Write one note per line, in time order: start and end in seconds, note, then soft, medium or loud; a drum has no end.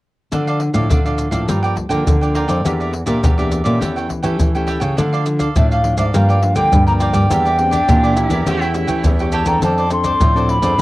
0.32 0.69 D3 medium
0.32 0.87 D3 soft
0.32 0.71 F3 medium
0.32 0.71 A3 soft
0.32 0.45 D4 soft
0.32 0.71 D4 medium
0.32 0.45 A4 soft
0.32 0.46 D5 soft
0.32 0.46 F5 soft
0.32 pandeiro medium
0.32 maracas medium
0.32 surdo medium
0.47 0.60 A4 soft
0.47 0.60 D5 medium
0.47 0.60 F5 medium
0.47 pandeiro soft
0.47 maracas soft
0.60 muted cavaquinho stroke soft
0.60 pandeiro medium
0.73 0.87 A2 medium
0.73 0.99 F3 medium
0.73 0.99 A3 medium
0.73 0.99 D4 medium
0.73 0.89 A4 soft
0.73 0.89 D5 medium
0.73 0.88 F5 medium
0.73 pandeiro medium
0.73 maracas medium
0.73 surdo soft
0.90 1.45 A2 medium
0.90 1.27 D3 medium
0.90 1.03 D4 soft
0.90 1.04 A4 soft
0.90 1.04 D5 soft
0.90 1.04 F5 soft
0.90 pandeiro medium
0.90 maracas medium
0.90 surdo medium
1.05 1.29 F3 medium
1.05 1.29 A3 medium
1.05 1.29 D4 medium
1.05 1.32 A4 soft
1.05 1.32 D5 medium
1.05 1.30 F5 medium
1.05 pandeiro soft
1.05 maracas soft
1.18 pandeiro medium
1.18 maracas medium
1.31 1.45 A2 medium
1.31 1.86 F3 medium
1.31 1.86 A#3 medium
1.31 1.86 D4 medium
1.31 1.47 A4 soft
1.31 1.47 D5 medium
1.31 1.46 F5 medium
1.31 pandeiro medium
1.31 maracas medium
1.31 surdo soft
1.47 2.03 G2 soft
1.47 1.73 G2 medium
1.47 1.62 F4 soft
1.47 1.62 A#4 soft
1.47 1.62 D5 soft
1.47 1.62 G5 soft
1.47 pandeiro medium
1.47 maracas medium
1.47 surdo medium
1.63 1.75 A#4 soft
1.63 1.75 D5 medium
1.63 1.75 G5 medium
1.63 pandeiro soft
1.63 maracas soft
1.76 muted cavaquinho stroke soft
1.76 pandeiro medium
1.76 surdo soft
1.89 2.03 D3 medium
1.89 2.15 F3 medium
1.89 2.15 A#3 medium
1.89 2.15 D4 medium
1.89 2.20 A#4 medium
1.89 2.19 D5 medium
1.89 2.19 G5 medium
1.89 pandeiro medium
1.89 maracas medium
1.89 surdo soft
2.07 2.62 D3 medium
2.07 2.44 D3 medium
2.07 pandeiro medium
2.07 maracas medium
2.07 surdo loud
2.21 2.61 F3 medium
2.21 2.61 A#3 medium
2.21 2.61 D4 medium
2.21 2.34 A#4 soft
2.21 2.35 D5 soft
2.21 2.35 G5 soft
2.21 pandeiro soft
2.21 maracas soft
2.35 2.49 F4 medium
2.35 2.48 A#4 medium
2.35 2.47 D5 medium
2.35 2.47 G5 medium
2.35 pandeiro medium
2.48 2.62 F2 medium
2.48 2.63 A#4 medium
2.48 2.63 D5 medium
2.48 2.63 G5 medium
2.48 pandeiro medium
2.48 maracas medium
2.48 surdo soft
2.65 3.02 E2 medium
2.65 3.20 E3 soft
2.65 2.92 A#3 medium
2.65 2.93 D4 soft
2.65 2.78 G4 soft
2.65 2.93 G4 medium
2.65 2.79 A#4 soft
2.65 2.79 D5 medium
2.65 2.79 E5 soft
2.65 pandeiro medium
2.65 maracas medium
2.65 surdo medium
2.80 2.92 A#4 soft
2.80 2.92 D5 medium
2.80 2.92 E5 medium
2.80 pandeiro soft
2.80 maracas soft
2.93 muted cavaquinho stroke soft
2.93 pandeiro medium
3.06 3.20 A#2 medium
3.06 3.32 A#3 medium
3.06 3.32 D4 medium
3.06 3.32 G4 medium
3.06 3.22 A#4 medium
3.06 3.21 D5 medium
3.06 3.21 E5 medium
3.06 pandeiro medium
3.06 maracas medium
3.06 surdo soft
3.23 3.61 E2 medium
3.23 3.78 E3 medium
3.23 3.37 G4 soft
3.23 3.37 A#4 soft
3.23 3.37 D5 medium
3.23 3.37 E5 soft
3.23 pandeiro medium
3.23 maracas medium
3.23 surdo loud
3.38 3.62 A#3 medium
3.38 3.63 D4 medium
3.38 3.63 G4 medium
3.38 3.65 A#4 medium
3.38 3.63 D5 medium
3.38 3.64 E5 medium
3.38 pandeiro soft
3.38 maracas soft
3.52 pandeiro medium
3.52 maracas medium
3.64 3.78 A#2 medium
3.64 4.20 A3 medium
3.64 4.20 C#4 soft
3.64 4.20 G4 medium
3.64 3.80 A#4 medium
3.64 3.79 D5 medium
3.64 3.79 E5 medium
3.64 pandeiro medium
3.64 maracas medium
3.64 surdo soft
3.80 4.06 E2 medium
3.80 4.37 E3 medium
3.80 3.94 G4 soft
3.80 3.95 A4 soft
3.80 3.95 C#5 soft
3.80 3.95 G5 medium
3.80 pandeiro medium
3.80 maracas medium
3.80 surdo medium
3.96 4.08 A4 soft
3.96 4.08 C#5 medium
3.96 4.09 G5 medium
3.96 pandeiro soft
3.96 maracas soft
4.09 muted cavaquinho stroke soft
4.09 pandeiro medium
4.09 surdo soft
4.22 4.37 E3 medium
4.22 4.49 A3 medium
4.22 4.49 C#4 medium
4.22 4.49 G4 medium
4.22 4.53 A4 medium
4.22 4.52 C#5 medium
4.22 4.52 G5 medium
4.22 pandeiro medium
4.22 maracas medium
4.22 surdo soft
4.39 4.77 E3 medium
4.39 4.95 E3 soft
4.39 pandeiro medium
4.39 maracas medium
4.39 surdo medium
4.55 4.94 A3 medium
4.55 4.94 C#4 medium
4.55 4.94 G4 medium
4.55 4.66 A4 soft
4.55 4.67 C#5 soft
4.55 4.67 G5 soft
4.55 pandeiro soft
4.55 maracas soft
4.67 4.81 G4 medium
4.67 4.80 A4 medium
4.67 4.80 C#5 medium
4.67 4.79 G5 medium
4.67 pandeiro medium
4.80 4.95 C#3 medium
4.80 4.96 A4 medium
4.80 4.96 C#5 medium
4.80 4.95 G5 medium
4.80 pandeiro medium
4.80 maracas medium
4.80 surdo soft
4.97 5.47 D3 medium
4.97 5.54 D3 soft
4.97 5.23 F3 medium
4.97 5.23 A3 medium
4.97 5.11 D4 soft
4.97 5.23 D4 medium
4.97 5.11 A4 soft
4.97 5.11 D5 soft
4.97 5.12 F5 soft
4.97 pandeiro medium
4.97 maracas medium
4.97 surdo medium
5.13 5.25 A4 medium
5.13 5.25 D5 medium
5.13 5.25 F5 medium
5.13 pandeiro soft
5.13 maracas soft
5.26 5.44 F3 medium
5.26 5.44 A3 soft
5.26 5.44 D4 medium
5.26 muted cavaquinho stroke soft
5.26 pandeiro medium
5.26 maracas medium
5.39 5.55 A4 medium
5.39 5.54 D5 medium
5.39 5.54 F5 medium
5.39 pandeiro medium
5.39 maracas medium
5.39 surdo soft
5.56 5.93 A2 medium
5.56 6.12 A2 medium
5.56 5.81 F3 soft
5.56 5.81 A3 medium
5.56 5.69 D4 soft
5.56 5.81 D4 medium
5.56 5.70 A4 soft
5.56 5.70 D5 soft
5.56 5.70 E5 medium
5.56 5.70 F5 soft
5.56 pandeiro medium
5.56 maracas medium
5.56 surdo medium
5.71 5.98 A4 medium
5.71 5.97 D5 medium
5.71 5.98 F5 medium
5.71 5.96 F5 medium
5.71 pandeiro soft
5.71 maracas soft
5.84 6.03 F3 medium
5.84 6.04 A3 medium
5.84 6.04 D4 medium
5.84 pandeiro medium
5.97 6.11 G#2 medium
5.97 6.13 A4 medium
5.97 6.13 D5 medium
5.97 6.05 E5 medium
5.97 6.12 F5 medium
5.97 pandeiro medium
5.97 maracas medium
5.97 surdo soft
6.14 6.51 G2 medium
6.14 6.70 G2 medium
6.14 6.39 F3 medium
6.14 6.39 A#3 medium
6.14 6.40 D4 medium
6.14 6.27 F4 soft
6.14 6.28 A#4 soft
6.14 6.28 D5 medium
6.14 6.57 F5 medium
6.14 6.27 G5 soft
6.14 pandeiro medium
6.14 maracas medium
6.14 surdo medium
6.29 6.41 A#4 medium
6.29 6.42 D5 medium
6.29 6.42 G5 medium
6.29 pandeiro soft
6.29 maracas soft
6.42 6.82 F3 medium
6.42 6.82 A#3 soft
6.42 6.83 D4 medium
6.42 muted cavaquinho stroke soft
6.42 pandeiro medium
6.55 6.69 D3 medium
6.55 6.86 A#4 medium
6.55 6.85 D5 medium
6.55 6.86 G5 loud
6.55 6.85 G5 medium
6.55 pandeiro medium
6.55 maracas medium
6.55 surdo soft
6.72 7.09 G2 loud
6.72 7.28 D3 medium
6.72 pandeiro medium
6.72 maracas medium
6.72 surdo loud
6.87 7.27 F3 medium
6.87 7.27 A#3 medium
6.87 7.27 D4 medium
6.87 7.00 A#4 soft
6.87 7.00 D5 soft
6.87 7.00 G5 soft
6.87 6.93 A#5 medium
6.87 pandeiro soft
6.87 maracas soft
7.00 7.14 F4 medium
7.00 7.14 A#4 medium
7.00 7.13 D5 medium
7.00 8.71 G5 loud
7.00 7.12 G5 medium
7.00 pandeiro medium
7.00 maracas medium
7.13 7.27 G2 medium
7.13 7.29 A#4 medium
7.13 7.29 D5 medium
7.13 7.28 G5 medium
7.13 pandeiro medium
7.13 maracas medium
7.13 surdo soft
7.30 7.80 E2 medium
7.30 7.86 E3 soft
7.30 7.48 A#3 medium
7.30 7.48 D4 medium
7.30 7.44 G4 soft
7.30 7.48 G4 medium
7.30 7.44 A#4 soft
7.30 7.44 D5 medium
7.30 7.45 E5 medium
7.30 pandeiro medium
7.30 maracas medium
7.30 surdo medium
7.45 7.57 A#4 medium
7.45 7.58 D5 medium
7.45 7.58 E5 medium
7.45 pandeiro soft
7.45 maracas soft
7.58 7.76 A#3 medium
7.58 7.73 C4 medium
7.58 7.77 D4 medium
7.58 7.77 G4 medium
7.58 muted cavaquinho stroke soft
7.58 pandeiro medium
7.71 8.17 D4 medium
7.71 7.87 A#4 medium
7.71 7.86 D5 medium
7.71 7.87 E5 medium
7.71 pandeiro medium
7.71 maracas medium
7.71 surdo soft
7.88 8.26 A#2 medium
7.88 8.44 E3 medium
7.88 8.13 A#3 medium
7.88 8.13 D4 medium
7.88 8.02 G4 soft
7.88 8.14 G4 medium
7.88 8.02 A#4 soft
7.88 8.02 D5 soft
7.88 8.03 E5 soft
7.88 pandeiro medium
7.88 maracas medium
7.88 surdo loud
8.04 8.31 A#4 medium
8.04 8.29 D5 medium
8.04 8.30 E5 medium
8.04 pandeiro soft
8.04 maracas soft
8.15 8.44 A#3 medium
8.15 8.44 D4 medium
8.15 8.46 E4 medium
8.15 8.44 G4 medium
8.15 pandeiro medium
8.15 maracas medium
8.30 8.43 E2 medium
8.30 8.46 A#4 medium
8.30 8.45 D5 medium
8.30 8.45 E5 medium
8.30 pandeiro medium
8.30 maracas medium
8.30 surdo soft
8.46 8.84 E2 medium
8.46 9.02 E3 medium
8.46 8.64 A3 medium
8.46 8.64 C#4 medium
8.46 8.60 G4 soft
8.46 8.62 G4 loud
8.46 8.64 G4 medium
8.46 8.60 A4 medium
8.46 8.61 C#5 soft
8.46 8.60 G5 medium
8.46 pandeiro medium
8.46 maracas medium
8.46 surdo medium
8.61 9.19 E4 loud
8.61 8.74 A4 medium
8.61 8.74 C#5 medium
8.61 8.74 G5 medium
8.61 pandeiro soft
8.61 maracas soft
8.74 9.14 A3 soft
8.74 9.14 C#4 medium
8.74 9.14 G4 medium
8.74 muted cavaquinho stroke soft
8.74 pandeiro medium
8.74 maracas medium
8.87 9.02 E3 medium
8.87 9.18 A4 medium
8.87 9.17 C#5 medium
8.87 9.17 G5 medium
8.87 pandeiro medium
8.87 maracas medium
8.87 surdo soft
9.04 9.42 E2 loud
9.04 9.60 E3 medium
9.04 pandeiro medium
9.04 maracas medium
9.04 surdo medium
9.19 9.44 A3 medium
9.19 9.45 C#4 medium
9.19 9.45 G4 medium
9.19 9.32 A4 soft
9.19 9.33 C#5 soft
9.19 9.33 G5 medium
9.19 pandeiro soft
9.19 maracas soft
9.32 9.47 G4 medium
9.32 9.47 A4 medium
9.32 9.46 C#5 medium
9.32 9.45 G5 medium
9.32 9.49 A5 medium
9.32 pandeiro medium
9.32 maracas medium
9.46 9.60 E2 medium
9.46 9.86 C4 medium
9.46 9.86 D4 medium
9.46 9.87 A4 medium
9.46 9.62 A4 medium
9.46 9.61 C#5 medium
9.46 9.61 G5 medium
9.46 9.63 A#5 medium
9.46 pandeiro medium
9.46 maracas medium
9.46 surdo soft
9.62 10.12 F2 loud
9.62 10.19 F3 medium
9.62 9.77 F4 medium
9.62 9.77 A4 medium
9.62 9.77 C5 soft
9.62 9.77 D5 medium
9.62 9.90 A5 medium
9.62 pandeiro medium
9.62 maracas medium
9.62 surdo medium
9.78 9.90 A4 medium
9.78 9.90 C5 medium
9.78 9.90 D5 medium
9.78 pandeiro soft
9.78 maracas soft
9.90 10.31 C4 medium
9.90 10.31 D4 medium
9.90 10.31 A4 medium
9.90 10.52 C6 loud
9.90 muted cavaquinho stroke soft
9.90 pandeiro medium
9.90 maracas medium
10.04 10.20 A4 medium
10.04 10.19 C5 medium
10.04 10.19 D5 medium
10.04 pandeiro medium
10.04 maracas medium
10.04 surdo soft
10.20 10.58 A2 medium
10.20 10.76 F3 medium
10.20 10.34 F4 soft
10.20 10.35 A4 soft
10.20 10.35 C5 medium
10.20 10.35 D5 soft
10.20 pandeiro medium
10.20 maracas medium
10.20 surdo medium
10.35 10.60 C4 medium
10.35 10.60 D4 medium
10.35 10.60 A4 medium
10.35 10.63 A4 medium
10.35 10.62 C5 medium
10.35 10.61 D5 medium
10.35 pandeiro soft
10.35 maracas soft
10.49 10.82 B5 loud
10.49 pandeiro medium
10.62 10.75 F2 medium
10.62 10.82 B3 medium
10.62 10.82 D4 medium
10.62 10.82 G#4 medium
10.62 10.78 A4 soft
10.62 10.78 C5 medium
10.62 10.77 D5 medium
10.62 pandeiro medium
10.62 maracas medium
10.62 surdo soft
10.78 10.82 E2 loud